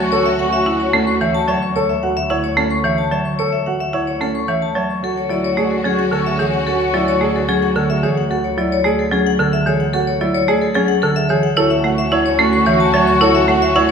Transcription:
Already playing: double bass section D2, string section C#4 F#4, clarinet F#4
0.00 vibraphone C#6
0.12 grand piano A4, vibraphone C#5
0.19 clarinet F#4
0.26 vibraphone E5
0.39 grand piano F#4, vibraphone F#5
0.48 clarinet F#4
0.53 vibraphone E5
0.66 marimba E4, vibraphone F#5
0.76 clarinet F#4
0.80 vibraphone C#5
0.93 marimba A3, grand piano C#4, vibraphone A4
1.05 clarinet F#4, vibraphone C#6
1.21 marimba E3, vibraphone C#5, grand piano E5
1.34 clarinet F#4, vibraphone A5
1.48 marimba F#3, grand piano C#5, vibraphone E5
1.62 vibraphone C#6
1.76 grand piano A4, vibraphone C#5
1.89 vibraphone E5
2.03 grand piano F#4, vibraphone F#5
2.17 vibraphone E5
2.30 marimba E4, grand piano C#5, vibraphone F#5
2.44 vibraphone C#5
2.57 marimba A3, grand piano C#4, vibraphone A4
2.70 vibraphone C#6
2.84 marimba E3, vibraphone C#5, grand piano E5
2.98 vibraphone A5
3.11 marimba F#3, grand piano C#5, vibraphone E5
3.25 vibraphone C#6
3.39 grand piano A4, vibraphone C#5
3.52 vibraphone E5
3.66 grand piano F#4, vibraphone F#5
3.80 vibraphone E5
3.93 marimba E4, grand piano C#5, vibraphone F#5
4.07 vibraphone C#5
4.21 marimba A3, grand piano C#4, vibraphone A4
4.35 vibraphone C#6
4.48 marimba E3, vibraphone C#5, grand piano E5
4.62 vibraphone A5
4.75 marimba F#3, grand piano C#5, vibraphone E5
4.90 vibraphone C#6
5.03 double bass section D2, string section C#4 F#4, grand piano F#4, clarinet F#4, vibraphone A4
5.17 vibraphone C#5
5.30 marimba F#3, grand piano E4, clarinet F#4, vibraphone D5
5.44 vibraphone C#5
5.57 marimba A3, clarinet F#4, grand piano G#4, vibraphone D5
5.71 vibraphone A4
5.84 marimba F#3, grand piano C#4, vibraphone G#4
5.89 clarinet F#4
5.99 vibraphone F#5
6.12 marimba D3, grand piano A4, vibraphone A4
6.17 clarinet F#4
6.26 vibraphone E5
6.39 marimba E3, grand piano G#4, vibraphone C#5
6.46 clarinet F#4
6.54 vibraphone F#5
6.66 grand piano F#4, vibraphone A4
6.74 clarinet F#4
6.80 vibraphone C#5
6.94 marimba F#3, grand piano E4, vibraphone D5
7.03 clarinet F#4
7.08 vibraphone C#5
7.21 marimba A3, grand piano G#4, vibraphone D5
7.31 clarinet F#4
7.36 vibraphone A4
7.48 marimba F#3, grand piano C#4, vibraphone G#4
7.60 clarinet F#4, vibraphone F#5
7.76 marimba D3, grand piano A4, vibraphone A4
7.89 clarinet F#4, vibraphone E5
8.03 marimba E3, grand piano G#4, vibraphone C#5
8.18 vibraphone F#5
8.30 grand piano F#4, vibraphone A4
8.44 vibraphone C#5
8.57 marimba F#3, grand piano E4, vibraphone D5
8.72 vibraphone C#5
8.84 marimba A3, grand piano G#4, vibraphone D5
8.99 vibraphone A4
9.12 marimba F#3, grand piano C#4, vibraphone G#4
9.27 vibraphone F#5
9.39 marimba D3, grand piano A4, vibraphone A4
9.53 vibraphone E5
9.66 marimba E3, grand piano G#4, vibraphone C#5
9.80 vibraphone F#5
9.93 grand piano F#4, vibraphone A4
10.07 vibraphone C#5
10.21 marimba F#3, grand piano E4, vibraphone D5
10.34 vibraphone C#5
10.48 marimba A3, grand piano G#4, vibraphone D5
10.61 vibraphone A4
10.75 marimba F#3, grand piano C#4, vibraphone G#4
10.88 vibraphone F#5
11.02 marimba D3, vibraphone A4, grand piano A4
11.16 vibraphone E5
11.29 marimba E3, grand piano G#4, vibraphone C#5
11.43 vibraphone F#5
11.57 double bass section D2, string section C#4 F#4, marimba E4, clarinet F#4, grand piano A4, vibraphone C#5
11.70 vibraphone E5
11.84 marimba A3, grand piano F#4, clarinet F#4, vibraphone F#5
11.98 vibraphone E5
12.12 marimba E4, clarinet F#4, grand piano C#5, vibraphone F#5
12.26 vibraphone C#5
12.39 marimba A3, grand piano C#4, clarinet F#4, vibraphone A4
12.53 vibraphone C#6
12.66 marimba E3, vibraphone C#5, grand piano E5
12.71 clarinet F#4
12.80 vibraphone A5
12.94 marimba F#3, grand piano C#5, vibraphone E5
13.00 clarinet F#4
13.07 vibraphone C#6
13.21 marimba E4, grand piano A4, vibraphone C#5
13.28 clarinet F#4
13.35 vibraphone E5
13.48 marimba A3, grand piano F#4, vibraphone F#5
13.57 clarinet F#4
13.62 vibraphone E5
13.76 marimba E4, grand piano C#5, vibraphone F#5
13.85 clarinet F#4

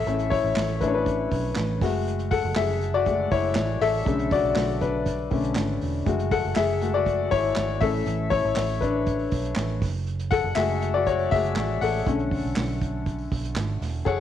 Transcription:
Already playing: upright piano A4 E5, downlifter
0.06 fingered electric bass A1, upright piano A3 C#4 E4, hi-hat pedal, open hi-hat
0.19 hi-hat pedal
0.30 upright piano E4 C#5, kick, hi-hat pedal, open hi-hat
0.44 fingered electric bass A1
0.56 fingered electric bass A1, snare, clap, hi-hat pedal, open hi-hat
0.80 upright piano A3 C#4 D4 E4 B4, kick, hi-hat pedal, open hi-hat
0.87 upright piano C#5
0.94 upright piano D4 B4
1.06 kick, hi-hat pedal, open hi-hat
1.31 fingered electric bass B1, kick, hi-hat pedal, open hi-hat
1.56 fingered electric bass A1, snare, clap, hi-hat pedal, open hi-hat
1.81 fingered electric bass F#1, upright piano G#3 A3 F#4, kick, snare, hi-hat pedal, open hi-hat
1.94 open hi-hat
2.07 hi-hat pedal, open hi-hat
2.19 hi-hat pedal
2.31 upright piano A4 F#5, kick, hi-hat pedal, open hi-hat
2.44 fingered electric bass F#1
2.56 fingered electric bass F#1, upright piano G#4 E5, snare, clap, hi-hat pedal, open hi-hat
2.81 hi-hat pedal, open hi-hat
2.94 upright piano F#4 D5
3.06 upright piano G#3 A3 F#4, kick, hi-hat pedal, open hi-hat
3.31 fingered electric bass F#1, upright piano E4 C#5, kick, hi-hat pedal, open hi-hat
3.55 fingered electric bass A1, snare, clap, hi-hat pedal, open hi-hat
3.81 fingered electric bass A1, upright piano A4 E5, snare, hi-hat pedal, open hi-hat
3.94 open hi-hat
4.05 fingered electric bass B1, upright piano C#3 D3 A3, kick, hi-hat pedal, open hi-hat
4.19 hi-hat pedal
4.31 upright piano F#4 D5, kick, hi-hat pedal, open hi-hat
4.43 fingered electric bass B1
4.56 fingered electric bass B1, snare, clap, hi-hat pedal, open hi-hat
4.81 upright piano D4 B4, kick, hi-hat pedal, open hi-hat
5.06 kick, hi-hat pedal, open hi-hat
5.17 open hi-hat
5.31 fingered electric bass B1, upright piano D3 A3 C#4, kick, hi-hat pedal, open hi-hat
5.43 hi-hat pedal
5.56 fingered electric bass G#1, snare, clap, hi-hat pedal, open hi-hat
5.82 fingered electric bass E1, hi-hat pedal, open hi-hat
5.94 open hi-hat
6.06 fingered electric bass F#1, upright piano G#3 A3 F#4, kick, hi-hat pedal, open hi-hat
6.19 hi-hat pedal
6.31 upright piano A4 F#5, kick, hi-hat pedal, open hi-hat
6.45 fingered electric bass F#1
6.56 fingered electric bass F#1, upright piano G#4 E5, snare, clap, hi-hat pedal, open hi-hat
6.81 upright piano G#3 A3 F#4, hi-hat pedal, open hi-hat
6.94 upright piano F#4 D5
7.06 kick, hi-hat pedal, open hi-hat
7.31 fingered electric bass G#1, upright piano E4 C#5, kick, hi-hat pedal, open hi-hat
7.56 fingered electric bass G#1, snare, clap, hi-hat pedal, open hi-hat
7.81 fingered electric bass A1, upright piano A3 C#4 E4 A4 E5, kick, snare, hi-hat pedal, open hi-hat
8.06 fingered electric bass A1, hi-hat pedal, open hi-hat
8.30 upright piano E4 C#5, kick, hi-hat pedal, open hi-hat
8.45 fingered electric bass A1
8.56 fingered electric bass A1, snare, clap, hi-hat pedal, open hi-hat
8.81 upright piano D4 B4, kick, hi-hat pedal, open hi-hat
9.06 kick, hi-hat pedal, open hi-hat
9.19 open hi-hat
9.31 fingered electric bass B1, kick, hi-hat pedal, open hi-hat
9.44 hi-hat pedal
9.56 fingered electric bass A1, snare, clap, hi-hat pedal, open hi-hat
9.82 fingered electric bass F#1, kick, snare, hi-hat pedal, open hi-hat
9.94 open hi-hat
10.07 hi-hat pedal, open hi-hat
10.19 hi-hat pedal
10.31 upright piano A4 F#5, kick, hi-hat pedal, open hi-hat
10.44 fingered electric bass F#1
10.55 fingered electric bass F#1, upright piano G#3 A3 F#4 G#4 E5, snare, clap, hi-hat pedal, open hi-hat
10.81 hi-hat pedal, open hi-hat
10.94 upright piano F#4 D5
11.06 upright piano F#4 C#5, kick, hi-hat pedal, open hi-hat
11.19 open hi-hat
11.31 fingered electric bass F#1, upright piano G#3 A3 F#4 G#4 E5, kick, hi-hat pedal, open hi-hat
11.45 hi-hat pedal
11.56 fingered electric bass A1, snare, clap, hi-hat pedal, open hi-hat
11.81 fingered electric bass A1, upright piano A4 F#5, hi-hat pedal, open hi-hat
11.94 open hi-hat
12.06 fingered electric bass B1, upright piano D3 A3 C#4, kick, hi-hat pedal, open hi-hat
12.19 hi-hat pedal
12.31 kick, hi-hat pedal, open hi-hat
12.44 fingered electric bass B1
12.56 fingered electric bass B1, snare, clap, hi-hat pedal, open hi-hat
12.81 kick, hi-hat pedal, open hi-hat
13.06 kick, hi-hat pedal, open hi-hat
13.18 open hi-hat
13.31 fingered electric bass B1, kick, hi-hat pedal, open hi-hat
13.44 hi-hat pedal
13.56 fingered electric bass G#1, snare, clap, hi-hat pedal, open hi-hat
13.81 fingered electric bass E1, snare, hi-hat pedal, open hi-hat
13.95 open hi-hat
14.05 fingered electric bass F#1, upright piano G#4 A4 C#5 F#5, kick, crash

